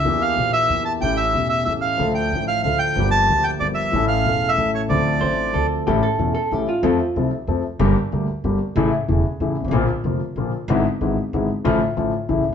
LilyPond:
<<
  \new Staff \with { instrumentName = "Bandoneon" } { \time 3/4 \key d \minor \tempo 4 = 186 e''8 f''4 e''4 a''8 | g''8 e''4 e''8 e''8 f''8~ | f''8 g''4 f''8 f''8 g''8~ | g''8 a''4 g''8 d''8 e''8~ |
e''8 f''4~ f''16 e''8. cis''8 | d''2~ d''8 r8 | r2. | r2. |
r2. | r2. | r2. | r2. |
r2. | }
  \new Staff \with { instrumentName = "Hollow-body jazz guitar" } { \time 3/4 \key d \minor r2. | r2. | r2. | r2. |
r2. | r4 c''4 a'4 | g'8 a'4 a'8 g'8 f'8~ | f'4. r4. |
r2. | r2. | r2. | r2. |
r2. | }
  \new Staff \with { instrumentName = "Grand piano" } { \clef bass \time 3/4 \key d \minor <e, e bes d' g'>4 <bes,, bes, e bes d' g'>4 <e, e bes d' g'>4 | <a,, a, e a cis' g'>4 <e,, e, e a cis' g'>4 <a,, a, e a cis' g'>4 | <d, d f a d' a'>4 <a,, a, f a d'>4 <d, d f a d' a'>4 | <g,, g, f bes d' g'>4 <d, d f bes d' g'>4 <g,, g, f bes d' g'>4 |
<a,, a, e a cis' a'>4 <e,, e, e a cis' a'>4 <a,, a, e a cis' a'>4 | <d, d f c' d' a'>4 <a,, a, f c' d' a'>4 <d, d f c' d' a'>4 | <a,, a, e a cis' a'>8 r8 <e,, e, e a cis' a'>8 r8 <a,, a, e a cis' a'>8 r8 | <f, f a c' a'>8 r8 <c, c f a c' a'>8 r8 <f, f a c' a'>8 r8 |
<g,, g, d g bes g'>8 r8 <d, d g bes g'>8 r8 <g,, g, d g bes g'>8 r8 | <a,, a, cis e a e'>8 r8 <e,, e, cis e a e'>8 r8 <a,, a, cis e a e'>8 r32 g,,32 gis,,32 a,,32 | <bes,, bes, d f bes f'>8 r8 <f,, f, d f bes f'>8 r8 <bes,, bes, d f bes f'>8 r8 | <gis,, gis, d gis b e'>8 r8 <gis,, gis, d gis b e'>8 r8 <gis,, gis, d gis b e'>8 r8 |
<a,, a, d f a f'>8 r8 <a,, a, d f a f'>8 r8 <a,, a, cis e a e'>8 r32 b,,32 r16 | }
  \new Staff \with { instrumentName = "Upright bass" } { \clef bass \time 3/4 \key d \minor e,4 bes,,4 e,4 | a,,4 e,,4 a,,4 | d,4 a,,4 d,4 | g,,4 d,4 g,,4 |
a,,4 e,,4 a,,4 | d,4 a,,4 d,4 | a,,16. r8 r32 e,,16. r8 r32 a,,16. r8 r32 | f,16. r8 r32 c,16. r8 r32 f,16. r8 r32 |
g,,16. r8 r32 d,16. r8 r32 g,,16. r8 r32 | a,,16. r8 r32 e,,16. r8 r32 a,,16. r16 g,,32 gis,,32 a,,32 | bes,,16. r8 r32 f,,16. r8 r32 bes,,16. r8 r32 | gis,,16. r8 r32 gis,,16. r8 r32 gis,,16. r8 r32 |
a,,16. r8 r32 a,,16. r8 r32 a,,16. r16 b,,32 r16 | }
>>